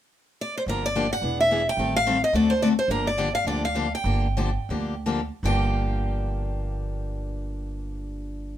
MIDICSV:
0, 0, Header, 1, 4, 480
1, 0, Start_track
1, 0, Key_signature, -2, "minor"
1, 0, Tempo, 277136
1, 1166, Time_signature, 4, 2, 24, 8
1, 5486, Tempo, 298805
1, 7406, Tempo, 344432
1, 8366, Tempo, 382897
1, 8846, Tempo, 398936
1, 12627, End_track
2, 0, Start_track
2, 0, Title_t, "Steel-string acoustic guitar"
2, 0, Program_c, 0, 25
2, 715, Note_on_c, 0, 74, 72
2, 961, Note_off_c, 0, 74, 0
2, 995, Note_on_c, 0, 72, 73
2, 1079, Note_off_c, 0, 72, 0
2, 1202, Note_on_c, 0, 70, 75
2, 1470, Note_off_c, 0, 70, 0
2, 1484, Note_on_c, 0, 74, 80
2, 1944, Note_off_c, 0, 74, 0
2, 1951, Note_on_c, 0, 78, 82
2, 2384, Note_off_c, 0, 78, 0
2, 2433, Note_on_c, 0, 76, 81
2, 2911, Note_off_c, 0, 76, 0
2, 2930, Note_on_c, 0, 79, 86
2, 3354, Note_off_c, 0, 79, 0
2, 3402, Note_on_c, 0, 77, 89
2, 3872, Note_off_c, 0, 77, 0
2, 3879, Note_on_c, 0, 75, 76
2, 4048, Note_off_c, 0, 75, 0
2, 4078, Note_on_c, 0, 74, 72
2, 4328, Note_on_c, 0, 72, 74
2, 4347, Note_off_c, 0, 74, 0
2, 4512, Note_off_c, 0, 72, 0
2, 4547, Note_on_c, 0, 74, 74
2, 4633, Note_off_c, 0, 74, 0
2, 4828, Note_on_c, 0, 72, 70
2, 5002, Note_off_c, 0, 72, 0
2, 5039, Note_on_c, 0, 70, 75
2, 5309, Note_off_c, 0, 70, 0
2, 5323, Note_on_c, 0, 74, 74
2, 5738, Note_off_c, 0, 74, 0
2, 5775, Note_on_c, 0, 77, 80
2, 5942, Note_off_c, 0, 77, 0
2, 5982, Note_on_c, 0, 74, 67
2, 6215, Note_off_c, 0, 74, 0
2, 6258, Note_on_c, 0, 77, 79
2, 6727, Note_off_c, 0, 77, 0
2, 6739, Note_on_c, 0, 79, 76
2, 8609, Note_off_c, 0, 79, 0
2, 8870, Note_on_c, 0, 79, 70
2, 12627, Note_off_c, 0, 79, 0
2, 12627, End_track
3, 0, Start_track
3, 0, Title_t, "Steel-string acoustic guitar"
3, 0, Program_c, 1, 25
3, 1173, Note_on_c, 1, 50, 54
3, 1177, Note_on_c, 1, 53, 59
3, 1185, Note_on_c, 1, 58, 55
3, 1186, Note_on_c, 1, 67, 56
3, 1188, Note_on_c, 1, 62, 60
3, 1492, Note_off_c, 1, 50, 0
3, 1494, Note_off_c, 1, 53, 0
3, 1498, Note_off_c, 1, 58, 0
3, 1499, Note_off_c, 1, 67, 0
3, 1500, Note_off_c, 1, 62, 0
3, 1654, Note_on_c, 1, 50, 72
3, 1656, Note_on_c, 1, 53, 79
3, 1657, Note_on_c, 1, 58, 80
3, 1666, Note_on_c, 1, 62, 80
3, 1670, Note_on_c, 1, 67, 88
3, 1829, Note_off_c, 1, 50, 0
3, 1830, Note_off_c, 1, 53, 0
3, 1831, Note_off_c, 1, 58, 0
3, 1836, Note_off_c, 1, 62, 0
3, 1837, Note_off_c, 1, 67, 0
3, 2113, Note_on_c, 1, 52, 55
3, 2126, Note_on_c, 1, 62, 57
3, 2127, Note_on_c, 1, 59, 62
3, 2135, Note_on_c, 1, 68, 54
3, 2441, Note_off_c, 1, 52, 0
3, 2447, Note_off_c, 1, 62, 0
3, 2448, Note_off_c, 1, 59, 0
3, 2452, Note_off_c, 1, 68, 0
3, 2610, Note_on_c, 1, 52, 61
3, 2617, Note_on_c, 1, 59, 71
3, 2619, Note_on_c, 1, 62, 76
3, 2634, Note_on_c, 1, 68, 72
3, 2786, Note_off_c, 1, 52, 0
3, 2790, Note_off_c, 1, 59, 0
3, 2791, Note_off_c, 1, 62, 0
3, 2799, Note_off_c, 1, 68, 0
3, 3092, Note_on_c, 1, 51, 60
3, 3097, Note_on_c, 1, 55, 58
3, 3102, Note_on_c, 1, 60, 63
3, 3110, Note_on_c, 1, 67, 56
3, 3116, Note_on_c, 1, 69, 60
3, 3410, Note_off_c, 1, 51, 0
3, 3413, Note_off_c, 1, 55, 0
3, 3415, Note_off_c, 1, 60, 0
3, 3419, Note_off_c, 1, 67, 0
3, 3422, Note_off_c, 1, 69, 0
3, 3574, Note_on_c, 1, 51, 79
3, 3581, Note_on_c, 1, 60, 83
3, 3582, Note_on_c, 1, 55, 84
3, 3584, Note_on_c, 1, 67, 81
3, 3589, Note_on_c, 1, 69, 94
3, 3748, Note_off_c, 1, 51, 0
3, 3752, Note_off_c, 1, 55, 0
3, 3752, Note_off_c, 1, 60, 0
3, 3753, Note_off_c, 1, 67, 0
3, 3755, Note_off_c, 1, 69, 0
3, 4039, Note_on_c, 1, 50, 59
3, 4048, Note_on_c, 1, 57, 60
3, 4054, Note_on_c, 1, 60, 58
3, 4057, Note_on_c, 1, 66, 61
3, 4062, Note_on_c, 1, 69, 70
3, 4363, Note_off_c, 1, 50, 0
3, 4368, Note_off_c, 1, 57, 0
3, 4371, Note_off_c, 1, 60, 0
3, 4372, Note_off_c, 1, 66, 0
3, 4375, Note_off_c, 1, 69, 0
3, 4541, Note_on_c, 1, 50, 65
3, 4541, Note_on_c, 1, 57, 81
3, 4547, Note_on_c, 1, 60, 73
3, 4553, Note_on_c, 1, 66, 72
3, 4557, Note_on_c, 1, 69, 84
3, 4711, Note_off_c, 1, 50, 0
3, 4712, Note_off_c, 1, 57, 0
3, 4714, Note_off_c, 1, 60, 0
3, 4717, Note_off_c, 1, 66, 0
3, 4720, Note_off_c, 1, 69, 0
3, 5020, Note_on_c, 1, 50, 55
3, 5030, Note_on_c, 1, 58, 63
3, 5032, Note_on_c, 1, 53, 57
3, 5035, Note_on_c, 1, 62, 60
3, 5042, Note_on_c, 1, 67, 62
3, 5335, Note_off_c, 1, 50, 0
3, 5340, Note_off_c, 1, 58, 0
3, 5341, Note_off_c, 1, 53, 0
3, 5343, Note_off_c, 1, 62, 0
3, 5346, Note_off_c, 1, 67, 0
3, 5498, Note_on_c, 1, 50, 82
3, 5506, Note_on_c, 1, 53, 78
3, 5507, Note_on_c, 1, 58, 81
3, 5512, Note_on_c, 1, 62, 92
3, 5516, Note_on_c, 1, 67, 92
3, 5661, Note_off_c, 1, 50, 0
3, 5666, Note_off_c, 1, 53, 0
3, 5666, Note_off_c, 1, 58, 0
3, 5668, Note_off_c, 1, 62, 0
3, 5671, Note_off_c, 1, 67, 0
3, 5965, Note_on_c, 1, 50, 57
3, 5965, Note_on_c, 1, 53, 59
3, 5971, Note_on_c, 1, 58, 56
3, 5975, Note_on_c, 1, 62, 63
3, 5983, Note_on_c, 1, 67, 63
3, 6267, Note_off_c, 1, 50, 0
3, 6267, Note_off_c, 1, 53, 0
3, 6270, Note_off_c, 1, 58, 0
3, 6272, Note_off_c, 1, 62, 0
3, 6276, Note_off_c, 1, 67, 0
3, 6418, Note_on_c, 1, 50, 68
3, 6427, Note_on_c, 1, 53, 76
3, 6433, Note_on_c, 1, 58, 76
3, 6435, Note_on_c, 1, 67, 83
3, 6436, Note_on_c, 1, 62, 81
3, 6594, Note_off_c, 1, 50, 0
3, 6598, Note_off_c, 1, 53, 0
3, 6601, Note_off_c, 1, 58, 0
3, 6603, Note_off_c, 1, 62, 0
3, 6603, Note_off_c, 1, 67, 0
3, 6905, Note_on_c, 1, 50, 63
3, 6906, Note_on_c, 1, 53, 54
3, 6910, Note_on_c, 1, 58, 61
3, 6921, Note_on_c, 1, 62, 67
3, 6922, Note_on_c, 1, 67, 63
3, 7240, Note_off_c, 1, 50, 0
3, 7241, Note_off_c, 1, 53, 0
3, 7243, Note_off_c, 1, 58, 0
3, 7248, Note_off_c, 1, 62, 0
3, 7249, Note_off_c, 1, 67, 0
3, 7413, Note_on_c, 1, 50, 81
3, 7416, Note_on_c, 1, 53, 74
3, 7425, Note_on_c, 1, 58, 82
3, 7427, Note_on_c, 1, 62, 94
3, 7433, Note_on_c, 1, 67, 89
3, 7580, Note_off_c, 1, 50, 0
3, 7582, Note_off_c, 1, 53, 0
3, 7587, Note_off_c, 1, 58, 0
3, 7587, Note_off_c, 1, 62, 0
3, 7590, Note_off_c, 1, 67, 0
3, 7877, Note_on_c, 1, 50, 61
3, 7882, Note_on_c, 1, 53, 53
3, 7882, Note_on_c, 1, 58, 58
3, 7887, Note_on_c, 1, 67, 60
3, 7888, Note_on_c, 1, 62, 57
3, 8203, Note_off_c, 1, 50, 0
3, 8206, Note_off_c, 1, 53, 0
3, 8206, Note_off_c, 1, 58, 0
3, 8209, Note_off_c, 1, 62, 0
3, 8209, Note_off_c, 1, 67, 0
3, 8375, Note_on_c, 1, 50, 71
3, 8378, Note_on_c, 1, 58, 72
3, 8379, Note_on_c, 1, 53, 75
3, 8390, Note_on_c, 1, 62, 76
3, 8391, Note_on_c, 1, 67, 74
3, 8546, Note_off_c, 1, 50, 0
3, 8547, Note_off_c, 1, 58, 0
3, 8548, Note_off_c, 1, 53, 0
3, 8554, Note_off_c, 1, 62, 0
3, 8554, Note_off_c, 1, 67, 0
3, 8852, Note_on_c, 1, 43, 69
3, 8862, Note_on_c, 1, 50, 72
3, 8875, Note_on_c, 1, 53, 79
3, 8882, Note_on_c, 1, 58, 75
3, 8889, Note_on_c, 1, 62, 76
3, 8892, Note_on_c, 1, 67, 83
3, 12627, Note_off_c, 1, 43, 0
3, 12627, Note_off_c, 1, 50, 0
3, 12627, Note_off_c, 1, 53, 0
3, 12627, Note_off_c, 1, 58, 0
3, 12627, Note_off_c, 1, 62, 0
3, 12627, Note_off_c, 1, 67, 0
3, 12627, End_track
4, 0, Start_track
4, 0, Title_t, "Upright bass"
4, 0, Program_c, 2, 32
4, 1150, Note_on_c, 2, 31, 73
4, 1923, Note_off_c, 2, 31, 0
4, 2104, Note_on_c, 2, 28, 72
4, 2879, Note_off_c, 2, 28, 0
4, 3064, Note_on_c, 2, 33, 74
4, 3839, Note_off_c, 2, 33, 0
4, 4036, Note_on_c, 2, 38, 79
4, 4806, Note_off_c, 2, 38, 0
4, 4990, Note_on_c, 2, 31, 81
4, 5754, Note_off_c, 2, 31, 0
4, 5931, Note_on_c, 2, 38, 66
4, 6699, Note_off_c, 2, 38, 0
4, 6885, Note_on_c, 2, 31, 85
4, 7683, Note_off_c, 2, 31, 0
4, 7861, Note_on_c, 2, 38, 72
4, 8656, Note_off_c, 2, 38, 0
4, 8839, Note_on_c, 2, 31, 76
4, 12627, Note_off_c, 2, 31, 0
4, 12627, End_track
0, 0, End_of_file